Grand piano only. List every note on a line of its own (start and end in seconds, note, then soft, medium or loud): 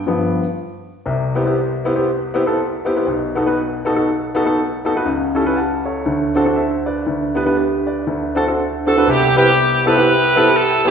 0.07 0.42 G2 medium
0.07 0.43 F3 medium
0.07 0.43 B3 medium
1.06 3.02 C2 medium
1.06 3.02 C3 medium
1.35 1.41 B3 medium
1.35 1.41 C4 medium
1.35 1.41 E4 medium
1.35 1.42 G4 medium
1.45 1.58 B3 medium
1.45 1.58 C4 medium
1.45 1.58 E4 medium
1.45 1.58 G4 medium
1.85 1.91 B3 medium
1.85 1.91 C4 medium
1.85 1.91 E4 medium
1.85 1.92 G4 medium
1.95 2.08 B3 medium
1.95 2.08 C4 medium
1.95 2.08 E4 medium
1.95 2.08 G4 medium
2.34 2.41 B3 medium
2.34 2.41 C4 medium
2.34 2.41 E4 medium
2.34 2.41 G4 medium
2.46 2.58 B3 medium
2.46 2.58 C4 medium
2.46 2.58 E4 medium
2.46 2.59 A4 medium
2.85 2.91 B3 medium
2.85 2.91 C4 medium
2.85 2.92 E4 medium
2.85 2.92 G4 medium
2.96 3.06 B3 medium
2.96 3.07 C4 medium
2.96 3.07 E4 medium
2.96 3.07 G4 medium
3.07 5.03 B1 medium
3.07 5.03 B2 medium
3.35 3.41 B3 medium
3.35 3.42 D#4 medium
3.35 3.42 F#4 medium
3.35 3.42 A4 medium
3.46 3.58 B3 medium
3.46 3.58 D#4 medium
3.46 3.59 F#4 medium
3.46 3.59 B4 medium
3.85 3.91 B3 medium
3.85 3.92 D#4 medium
3.85 3.92 F#4 medium
3.85 3.92 A4 medium
3.95 4.08 B3 medium
3.95 4.08 D#4 medium
3.95 4.08 F#4 medium
3.95 4.08 A4 medium
4.35 4.41 B3 medium
4.35 4.41 D#4 medium
4.35 4.42 F#4 medium
4.35 4.42 A4 medium
4.45 4.58 B3 medium
4.45 4.58 D#4 medium
4.45 4.58 F#4 medium
4.45 4.58 A4 medium
4.85 4.91 B3 medium
4.85 4.91 D#4 medium
4.85 4.92 F#4 medium
4.85 4.92 A4 medium
4.96 5.06 B3 medium
4.96 5.06 D#4 medium
4.96 5.07 F#4 medium
4.96 5.07 B4 medium
5.06 6.02 C#2 medium
5.06 6.02 C#3 medium
5.35 5.41 C#4 medium
5.35 5.42 E4 medium
5.35 5.42 G4 medium
5.35 5.42 A4 medium
5.45 5.58 C#4 medium
5.45 5.58 E4 medium
5.45 5.58 G4 medium
5.45 5.57 B4 medium
5.56 5.84 F#5 soft
5.56 5.84 A5 medium
5.86 6.34 A4 soft
5.86 6.33 C#5 medium
6.06 7.02 D2 medium
6.06 7.03 D3 medium
6.35 6.41 C4 medium
6.35 6.42 D4 medium
6.35 6.42 F#4 medium
6.35 6.42 A4 medium
6.45 6.58 C4 medium
6.45 6.58 D4 medium
6.45 6.58 F#4 medium
6.45 6.58 A4 medium
6.56 6.85 C5 soft
6.56 6.85 E5 medium
6.86 7.34 B4 soft
6.86 7.34 D5 medium
7.06 8.03 D2 medium
7.06 8.03 D3 medium
7.35 7.42 B3 medium
7.35 7.42 D4 medium
7.35 7.42 G4 medium
7.35 7.42 B4 medium
7.45 7.58 B3 medium
7.45 7.59 D4 medium
7.45 7.56 G4 medium
7.45 7.56 B4 medium
7.57 7.85 G4 soft
7.57 7.85 B4 medium
7.87 8.34 B4 soft
7.87 8.34 D5 medium
8.07 9.03 D2 medium
8.07 9.03 D3 medium
8.35 8.42 C4 medium
8.35 8.42 D4 medium
8.35 8.42 F#4 medium
8.35 8.43 A4 medium
8.47 8.59 C4 medium
8.47 8.59 D4 medium
8.47 8.59 F#4 medium
8.47 8.60 A4 medium
8.86 8.92 C4 medium
8.86 8.92 D4 medium
8.86 8.93 F#4 medium
8.86 8.93 A4 medium
8.97 9.07 C4 medium
8.97 9.07 D4 medium
8.97 9.08 F#4 medium
8.97 9.08 B4 medium
9.07 10.91 C2 medium
9.07 10.91 C3 medium
9.36 9.48 B3 medium
9.36 9.48 C4 medium
9.36 9.48 E4 medium
9.36 9.48 G4 medium
9.36 9.48 B4 medium
9.86 9.92 B3 medium
9.86 9.92 C4 medium
9.86 9.92 E4 medium
9.86 9.92 G4 medium
9.86 9.92 A4 medium
9.97 10.09 B3 medium
9.97 10.09 C4 medium
9.97 10.09 E4 medium
9.97 10.09 G4 medium
9.97 10.09 B4 medium
10.36 10.48 B3 medium
10.36 10.48 C4 medium
10.36 10.48 E4 medium
10.36 10.48 G4 medium
10.36 10.48 A4 medium
10.85 10.91 B3 medium
10.85 10.91 C4 medium
10.85 10.91 E4 medium
10.85 10.91 G4 medium
10.85 10.91 C5 medium